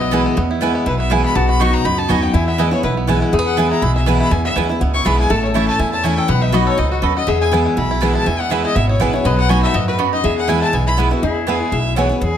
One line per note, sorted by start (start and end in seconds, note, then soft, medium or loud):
0.00 0.25 B1 medium
0.00 0.35 B2 medium
0.00 0.26 B3 medium
0.00 0.12 E4 medium
0.00 1.41 B4 loud
0.00 0.37 D#5 loud
0.11 0.35 E3 medium
0.11 0.36 G#3 medium
0.11 0.22 B3 loud
0.11 0.36 B3 loud
0.11 0.22 E4 loud
0.11 0.48 E4 medium
0.11 0.36 E4 loud
0.11 0.22 B4 loud
0.11 0.22 G#5 loud
0.26 0.37 B3 medium
0.37 0.74 E2 loud
0.37 0.84 E2 medium
0.37 0.75 B3 medium
0.51 0.61 E4 medium
0.61 0.85 E3 medium
0.61 0.85 G#3 medium
0.61 0.71 B3 medium
0.61 0.86 B3 loud
0.61 0.71 E4 loud
0.61 0.85 E4 medium
0.61 0.86 E4 loud
0.61 0.71 B4 loud
0.61 0.72 G#5 loud
0.75 0.99 B3 medium
0.86 1.23 B1 medium
0.86 1.33 B2 medium
0.86 1.10 E4 medium
0.86 0.98 B4 medium
0.99 1.24 B3 medium
0.99 1.13 E5 medium
1.10 1.34 E3 medium
1.10 1.34 G#3 medium
1.10 1.20 B3 loud
1.10 1.35 B3 medium
1.10 1.20 E4 loud
1.10 1.36 E4 medium
1.10 1.35 E4 loud
1.10 1.21 B4 loud
1.10 1.23 G#5 loud
1.10 1.21 G#5 loud
1.24 1.35 B3 medium
1.24 1.37 B5 loud
1.35 1.73 B1 medium
1.35 1.82 B2 medium
1.35 1.73 B3 medium
1.35 2.30 F#4 loud
1.35 1.49 A5 loud
1.49 1.83 F#4 medium
1.49 1.62 B5 loud
1.59 1.84 F#3 medium
1.59 1.69 B3 medium
1.59 1.84 B3 loud
1.59 1.84 D#4 medium
1.59 1.84 D#4 loud
1.59 1.70 F#4 medium
1.59 1.85 F#4 loud
1.59 1.70 D#5 medium
1.59 1.70 B5 loud
1.59 1.75 C#6 loud
1.74 1.98 B3 medium
1.74 1.87 A#5 loud
1.84 2.06 C#2 medium
1.84 2.32 F#2 medium
1.84 2.20 D#4 medium
1.84 2.00 B5 loud
1.98 2.23 B3 medium
1.98 2.11 A5 loud
2.08 2.30 D#2 medium
2.08 2.33 F#3 medium
2.08 2.19 B3 loud
2.08 2.33 B3 medium
2.08 2.34 D#4 loud
2.08 2.19 F#4 loud
2.08 2.34 F#4 medium
2.08 2.34 F#4 loud
2.08 2.19 D#5 loud
2.08 2.24 G#5 loud
2.08 2.19 B5 loud
2.22 2.47 B3 medium
2.22 2.36 G5 medium
2.34 2.71 E2 loud
2.34 2.81 E2 medium
2.34 3.17 E4 medium
2.34 2.58 E4 medium
2.34 2.47 G#5 loud
2.47 2.71 B3 medium
2.47 2.61 E5 loud
2.58 2.71 E3 medium
2.58 2.72 G#3 loud
2.58 2.68 B3 medium
2.58 2.72 B3 medium
2.58 2.69 E4 loud
2.58 2.83 E4 medium
2.58 2.70 E4 medium
2.58 2.69 B4 medium
2.58 2.72 D#5 medium
2.58 2.69 G#5 medium
2.71 2.96 B3 medium
2.71 2.84 B3 medium
2.71 2.83 E4 medium
2.71 2.83 C#5 medium
2.83 3.21 B1 loud
2.83 3.30 B2 medium
2.83 3.08 E4 medium
2.83 2.91 B4 medium
2.97 3.31 B3 medium
3.07 3.31 E3 medium
3.07 3.32 G#3 loud
3.07 3.18 B3 medium
3.07 3.32 B3 loud
3.07 3.18 E4 medium
3.07 3.21 E4 medium
3.07 3.32 E4 loud
3.07 3.18 B4 loud
3.07 3.18 G#5 loud
3.22 3.33 E4 medium
3.32 3.70 E2 loud
3.32 3.80 E2 medium
3.32 3.39 A3 medium
3.32 5.26 G#4 medium
3.39 3.58 B3 medium
3.46 3.59 F#5 loud
3.57 3.81 E3 medium
3.57 3.81 G#3 medium
3.57 3.67 B3 medium
3.57 3.82 B3 loud
3.57 3.67 E4 medium
3.57 3.71 E4 medium
3.57 3.82 E4 loud
3.57 3.67 B4 loud
3.57 3.70 G#5 loud
3.57 3.67 G#5 loud
3.71 3.83 E4 medium
3.71 3.83 A#5 loud
3.82 4.19 B1 medium
3.82 4.29 B2 medium
3.82 3.96 E4 medium
3.82 3.95 B5 loud
3.96 4.07 E4 medium
3.96 4.09 E5 medium
4.06 4.30 E3 medium
4.06 4.31 G#3 medium
4.06 4.16 B3 medium
4.06 4.31 B3 loud
4.06 4.16 E4 medium
4.06 4.19 E4 medium
4.06 4.31 E4 loud
4.06 4.17 B4 medium
4.06 4.19 G#5 medium
4.06 4.17 G#5 loud
4.19 4.54 E4 medium
4.19 4.33 B5 loud
4.31 4.50 E2 loud
4.31 4.78 E2 medium
4.31 4.67 E3 medium
4.31 4.44 G#5 loud
4.45 4.79 B3 medium
4.45 4.52 E5 loud
4.56 4.77 D#2 medium
4.56 4.69 E3 medium
4.56 4.69 G#3 medium
4.56 4.66 B3 loud
4.56 4.69 B3 medium
4.56 4.66 E4 medium
4.56 4.69 E4 medium
4.56 4.68 E4 loud
4.56 4.66 B4 medium
4.56 4.66 G#5 medium
4.69 4.81 B3 medium
4.69 4.80 E4 medium
4.69 4.93 E4 medium
4.80 5.02 C#2 medium
4.80 5.28 B2 medium
4.80 5.05 B3 medium
4.94 5.18 E4 medium
4.94 5.07 C#6 loud
5.05 5.26 B1 medium
5.05 5.29 E3 medium
5.05 5.29 G#3 loud
5.05 5.15 B3 medium
5.05 5.30 B3 medium
5.05 5.30 B3 loud
5.05 5.15 E4 loud
5.05 5.30 E4 loud
5.05 5.15 B4 loud
5.05 5.16 G#5 loud
5.05 5.19 B5 loud
5.19 5.30 E4 medium
5.19 5.32 G#5 loud
5.30 5.67 A1 loud
5.30 5.77 A2 loud
5.30 5.66 A3 medium
5.30 6.28 A4 loud
5.30 5.43 A5 loud
5.44 5.78 C#4 medium
5.44 5.57 C#5 medium
5.54 5.78 E3 medium
5.54 5.64 A3 medium
5.54 5.79 A3 loud
5.54 5.79 C#4 loud
5.54 5.65 E4 medium
5.54 5.79 E4 medium
5.54 5.65 C#5 loud
5.54 5.68 E5 loud
5.54 5.65 A5 loud
5.68 6.02 A4 medium
5.68 5.80 A5 loud
5.79 6.17 E2 loud
5.79 6.27 E2 medium
5.79 6.03 E4 medium
5.79 5.91 G#5 loud
5.92 6.27 C#4 medium
5.92 6.05 A5 loud
6.03 6.28 E3 medium
6.03 6.13 A3 medium
6.03 6.28 A3 medium
6.03 6.28 C#4 loud
6.03 6.14 E4 medium
6.03 6.29 E4 medium
6.03 6.29 E4 loud
6.03 6.14 C#5 loud
6.03 6.19 G#5 medium
6.03 6.14 A5 loud
6.17 6.29 A4 medium
6.17 6.30 G5 loud
6.28 6.66 B1 loud
6.28 6.76 B2 medium
6.28 6.70 B3 medium
6.28 7.12 B4 loud
6.28 6.43 F#5 loud
6.42 6.76 D#4 medium
6.42 6.55 E5 loud
6.52 6.77 F#3 loud
6.52 6.63 B3 medium
6.52 6.77 B3 medium
6.52 6.77 D#4 loud
6.52 6.63 F#4 medium
6.52 6.89 F#4 medium
6.52 6.78 F#4 loud
6.52 6.63 D#5 loud
6.52 6.66 D#5 loud
6.52 6.63 B5 loud
6.67 7.01 A4 medium
6.67 6.80 C#5 loud
6.78 6.99 C#2 medium
6.78 7.01 G#2 medium
6.78 7.14 D#4 medium
6.78 6.91 D#5 loud
6.92 7.05 F#4 medium
6.92 7.15 F#4 medium
7.02 7.24 D#2 medium
7.02 7.26 F#2 medium
7.02 7.12 B3 medium
7.02 7.12 F#4 medium
7.02 7.28 A4 medium
7.02 7.15 B4 medium
7.02 7.13 D#5 loud
7.02 7.13 B5 loud
7.16 7.28 F#4 medium
7.16 7.30 D#5 loud
7.27 7.74 E2 loud
7.27 7.65 E2 loud
7.27 8.40 B3 medium
7.27 9.31 G#4 loud
7.27 7.40 E5 medium
7.41 7.52 E4 medium
7.41 7.48 G#5 loud
7.51 7.75 E3 medium
7.51 7.76 G#3 medium
7.51 7.62 B3 medium
7.51 7.76 B3 medium
7.51 7.62 E4 medium
7.51 7.65 E4 medium
7.51 7.77 E4 loud
7.51 7.62 B4 loud
7.51 7.62 G#5 loud
7.66 7.77 E4 medium
7.77 8.14 B1 medium
7.77 8.24 B2 medium
7.77 7.90 E4 medium
7.77 8.12 B5 medium
7.91 8.01 E4 medium
8.01 8.25 E3 medium
8.01 8.25 G#3 loud
8.01 8.11 B3 loud
8.01 8.26 B3 medium
8.01 8.11 E4 medium
8.01 8.14 E4 medium
8.01 8.26 E4 loud
8.01 8.12 B4 loud
8.01 8.12 G#5 loud
8.15 8.49 E4 medium
8.15 8.28 A5 loud
8.26 8.73 E2 medium
8.26 8.64 E2 medium
8.26 8.62 E3 medium
8.26 8.41 G#5 loud
8.40 8.75 B3 medium
8.40 8.52 F#5 loud
8.50 8.74 E3 medium
8.50 8.75 G#3 medium
8.50 8.60 B3 medium
8.50 8.75 B3 loud
8.50 8.61 E4 medium
8.50 8.64 E4 medium
8.50 8.75 E4 loud
8.50 8.61 B4 medium
8.50 8.64 E5 medium
8.50 8.61 G#5 medium
8.64 8.88 E4 medium
8.64 8.77 D#5 loud
8.75 8.96 G#1 loud
8.75 9.23 B2 medium
8.75 9.00 B3 medium
8.75 8.88 E5 loud
8.89 9.13 E4 medium
8.89 9.02 C#5 loud
9.00 9.21 A1 medium
9.00 9.13 E3 medium
9.00 9.13 G#3 medium
9.00 9.10 B3 medium
9.00 9.38 B3 medium
9.00 9.14 B3 medium
9.00 9.10 E4 loud
9.00 9.12 E4 loud
9.00 9.15 B4 medium
9.00 9.10 B4 loud
9.00 9.10 G#5 loud
9.13 9.26 B3 medium
9.13 9.24 E4 medium
9.13 9.25 E4 medium
9.13 9.27 C#5 loud
9.25 9.62 B1 loud
9.25 9.72 B2 loud
9.25 9.60 F#3 medium
9.25 10.20 B4 loud
9.25 9.37 D#5 loud
9.38 9.74 B3 medium
9.38 9.51 F#5 loud
9.49 9.73 F#3 medium
9.49 9.59 B3 medium
9.49 9.74 B3 medium
9.49 9.74 D#4 loud
9.49 9.59 F#4 medium
9.49 9.85 F#4 medium
9.49 9.74 F#4 loud
9.49 9.60 D#5 loud
9.49 9.62 G#5 loud
9.49 9.60 B5 loud
9.63 9.97 A4 medium
9.63 9.76 E5 loud
9.74 10.12 F#2 medium
9.74 9.98 G#2 medium
9.74 9.99 B3 medium
9.74 9.87 D#5 medium
9.88 10.22 F#4 medium
9.88 9.95 B4 loud
9.98 10.22 F#2 medium
9.98 10.08 B3 loud
9.98 10.73 B3 medium
9.98 10.09 F#4 medium
9.98 10.09 D#5 medium
9.98 10.09 B5 loud
10.13 10.24 D#4 medium
10.13 10.26 D#5 loud
10.24 10.71 E2 medium
10.24 10.61 E2 loud
10.24 10.59 E3 medium
10.24 11.07 G#4 medium
10.24 10.37 E5 medium
10.37 10.50 F#5 loud
10.48 10.72 E3 loud
10.48 10.72 G#3 medium
10.48 10.58 B3 medium
10.48 10.72 B3 medium
10.48 10.61 E4 medium
10.48 10.58 E4 medium
10.48 10.73 E4 loud
10.48 10.58 B4 loud
10.48 10.61 G#5 loud
10.48 10.59 G#5 loud
10.62 10.86 E4 medium
10.62 10.76 A5 loud
10.73 11.11 B1 medium
10.73 11.20 B2 medium
10.73 10.97 B3 medium
10.73 10.86 G#5 loud
10.87 11.10 E4 medium
10.87 10.94 B5 loud
10.97 11.10 E3 medium
10.97 11.11 G#3 loud
10.97 11.07 B3 loud
10.97 11.23 B3 medium
10.97 11.11 B3 medium
10.97 11.08 E4 medium
10.97 11.10 E4 loud
10.97 11.08 B4 medium
10.97 11.08 G#5 medium
11.11 11.23 B3 medium
11.11 11.22 E4 medium
11.11 11.23 E4 medium
11.11 11.25 F#4 medium
11.22 11.60 E2 medium
11.22 11.70 E2 medium
11.22 12.37 E4 medium
11.22 11.47 G#4 medium
11.47 11.71 E3 medium
11.47 11.71 G#3 medium
11.47 11.57 B3 loud
11.47 11.71 B3 medium
11.47 11.54 B3 medium
11.47 11.57 E4 medium
11.47 11.51 E4 medium
11.47 11.72 E4 loud
11.47 11.74 G#4 medium
11.47 11.57 B4 medium
11.47 11.57 G#5 loud
11.72 12.09 B1 medium
11.72 12.19 B2 medium
11.72 11.96 E5 medium
11.96 12.09 E3 loud
11.96 12.10 G#3 medium
11.96 12.06 B3 medium
11.96 12.10 B3 medium
11.96 12.03 B3 medium
11.96 12.07 E4 loud
11.96 12.00 E4 medium
11.96 12.08 E4 loud
11.96 12.07 B4 medium
11.96 12.20 C#5 medium
11.96 12.07 G#5 medium
12.09 12.22 B3 medium
12.09 12.21 E4 medium
12.21 12.37 E2 medium
12.21 12.37 G#4 loud